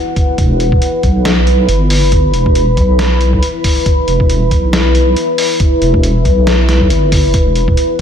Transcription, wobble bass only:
0.38 0.80 E1 loud
1.03 1.67 B1 medium
1.69 2.33 G1 loud
2.34 2.76 E1 medium
2.77 3.41 B1 medium
4.08 4.50 E1 medium
4.51 5.15 B1 medium
5.82 6.24 E1 medium
6.25 6.92 B1 medium
6.90 7.33 G1 medium
7.34 7.76 E1 loud

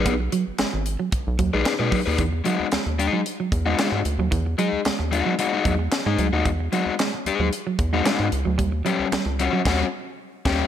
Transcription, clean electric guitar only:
0.06 0.17 B3 medium
0.20 muted clean electric guitar stroke medium
0.33 0.44 F#3 medium
0.59 0.70 G#3 medium
0.73 muted clean electric guitar stroke soft
1.00 1.09 F#3 medium
1.13 muted clean electric guitar stroke soft
1.39 1.50 F#3 medium
1.53 1.63 G#3 medium
1.66 muted clean electric guitar stroke soft
1.79 1.89 G#3 medium
1.92 2.03 F#3 medium
2.19 2.30 E3 medium
2.33 muted clean electric guitar stroke soft
2.46 2.57 F#3 medium
2.73 2.83 G#3 medium
2.86 muted clean electric guitar stroke soft
3.13 3.23 F#3 medium
3.40 3.50 F#3 medium
3.53 muted clean electric guitar stroke soft
3.67 3.76 G#3 medium
3.79 3.90 G#3 medium
3.93 muted clean electric guitar stroke soft
4.20 4.29 F#3 medium
4.31 4.43 E3 medium
4.46 muted clean electric guitar stroke soft
4.59 4.70 F#3 medium
4.86 4.97 G#3 medium
4.99 muted clean electric guitar stroke soft
5.26 5.36 F#3 medium
5.39 muted clean electric guitar stroke soft
5.65 5.76 F#3 medium
5.79 5.89 G#3 medium
5.92 muted clean electric guitar stroke soft
6.06 6.16 G#3 medium
6.19 6.30 F#3 medium
6.46 6.57 E3 medium
6.60 muted clean electric guitar stroke medium
6.73 6.84 F#3 medium
7.00 7.11 G#3 medium
7.14 muted clean electric guitar stroke soft
7.40 7.50 F#3 medium
7.67 7.76 F#3 medium
7.79 muted clean electric guitar stroke soft
7.93 8.03 G#3 medium
8.05 8.17 G#3 medium
8.19 muted clean electric guitar stroke soft
8.45 8.56 F#3 medium
8.58 8.69 G3 medium
8.72 muted clean electric guitar stroke soft
8.85 8.96 F#3 medium
9.12 9.23 G3 medium
9.26 muted clean electric guitar stroke soft
9.53 9.63 F#3 medium

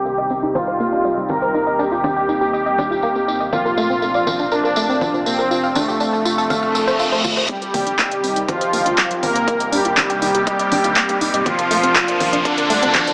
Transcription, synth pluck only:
0.05 0.17 A#3 medium
0.18 0.29 D#5 medium
0.30 0.42 C4 medium
0.43 0.50 D#4 medium
0.55 0.66 C5 medium
0.68 0.72 C5 medium
0.80 0.88 A#3 medium
0.92 1.04 D4 medium
1.05 1.13 G3 loud
1.17 1.25 G3 medium
1.29 1.37 C4 medium
1.42 1.47 C5 medium
1.54 1.62 D#4 medium
1.67 1.71 D#5 medium
1.79 1.87 D4 loud
1.92 2.03 F4 medium
2.04 2.16 D4 medium
2.16 2.28 G5 medium
2.29 2.40 D#4 medium
2.41 2.49 G4 medium
2.53 2.65 D#5 medium
2.66 2.71 D#5 medium
2.78 2.86 D4 loud
2.91 3.02 F4 medium
3.03 3.11 A#3 loud
3.16 3.23 A#3 medium
3.28 3.36 D#4 medium
3.40 3.45 D#5 medium
3.53 3.60 A#3 medium
3.65 3.70 A#4 medium
3.77 3.85 A3 loud
3.90 4.01 C4 medium
4.02 4.14 A3 medium
4.15 4.26 D5 medium
4.27 4.39 A#3 medium
4.40 4.47 D4 medium
4.52 4.63 A#4 medium
4.64 4.69 A#4 medium
4.77 4.84 A3 medium
4.89 5.01 C4 medium
5.01 5.09 F3 loud
5.14 5.22 F3 medium
5.26 5.34 A#3 medium
5.39 5.43 A#4 medium
5.51 5.59 F4 medium
5.63 5.68 F5 medium
5.76 5.84 D4 loud
5.88 6.00 G4 medium
6.00 6.12 D4 medium
6.13 6.25 A5 medium
6.25 6.37 F4 medium
6.38 6.46 A4 medium
6.50 6.61 F5 medium
6.63 6.67 F5 medium
6.75 6.83 A4 medium
6.87 6.95 C5 loud
7.00 7.04 F4 medium
7.12 7.20 C5 medium
7.24 7.36 F4 medium
7.37 7.45 C5 medium
7.49 7.57 C4 medium
7.62 7.67 C5 medium
7.74 7.82 A#3 loud
7.87 7.98 D4 medium
7.99 8.11 A#3 medium
8.12 8.23 D#5 medium
8.24 8.36 C4 medium
8.36 8.44 D#4 medium
8.49 8.60 C5 medium
8.61 8.66 C5 medium
8.73 8.81 A#3 loud
8.86 8.97 D4 medium
8.98 9.06 G3 loud
9.11 9.18 G3 medium
9.23 9.31 C4 medium
9.35 9.40 C5 medium
9.48 9.56 D#4 medium
9.60 9.65 D#5 medium
9.72 9.80 D4 loud
9.85 9.96 F4 medium
9.97 10.09 D4 medium
10.10 10.21 G5 medium
10.22 10.34 D#4 medium
10.35 10.42 G4 medium
10.47 10.58 D#5 medium
10.60 10.64 D#5 medium
10.72 10.80 D4 loud
10.84 10.96 F4 medium
10.97 11.04 A#3 loud
11.09 11.17 A#3 medium
11.21 11.29 D#4 medium
11.34 11.38 D#5 medium
11.46 11.54 A#3 medium
11.58 11.63 A#4 medium
11.71 11.79 A3 loud
11.83 11.95 C4 medium
11.96 12.07 A3 medium
12.08 12.20 D5 medium
12.20 12.32 A#3 medium
12.33 12.41 D4 medium
12.45 12.57 A#4 medium
12.58 12.62 A#4 medium
12.70 12.78 A3 loud
12.82 12.94 C4 medium
12.95 13.03 F3 loud
13.07 13.13 F3 medium

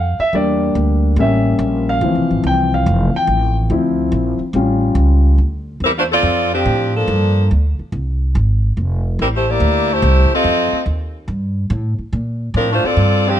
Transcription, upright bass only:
0.00 0.17 F2 medium
0.19 muted upright bass stroke soft
0.33 0.74 E2 medium
0.75 1.16 D2 medium
1.16 1.58 A1 medium
1.59 2.00 A#1 loud
2.01 2.17 D2 loud
2.15 2.30 C2 medium
2.31 2.43 A1 medium
2.43 2.85 C2 loud
2.86 3.13 F1 loud
3.15 muted upright bass stroke soft
3.27 3.69 A1 loud
3.70 4.11 D2 medium
4.12 4.39 A#1 medium
4.39 muted upright bass stroke soft
4.53 4.94 A1 medium
4.95 5.37 C#2 loud
5.38 5.79 D2 medium
5.80 6.22 E2 medium
6.23 6.64 F2 loud
6.65 7.06 A2 loud
7.08 7.48 G2 medium
7.51 7.77 D2 medium
7.79 muted upright bass stroke soft
7.92 8.33 C2 medium
8.35 8.75 G#1 loud
8.77 9.17 F1 medium
9.19 9.60 A1 medium
9.60 10.01 D2 loud
10.02 10.29 C2 loud
10.31 muted upright bass stroke soft
10.44 10.71 F2 medium
10.73 muted upright bass stroke soft
10.86 11.27 D#2 medium
11.28 11.69 G2 medium
11.70 11.97 A2 loud
11.99 muted upright bass stroke soft
12.13 12.53 A#2 medium
12.54 12.81 A2 loud
12.84 muted upright bass stroke soft
12.97 13.38 G2 medium

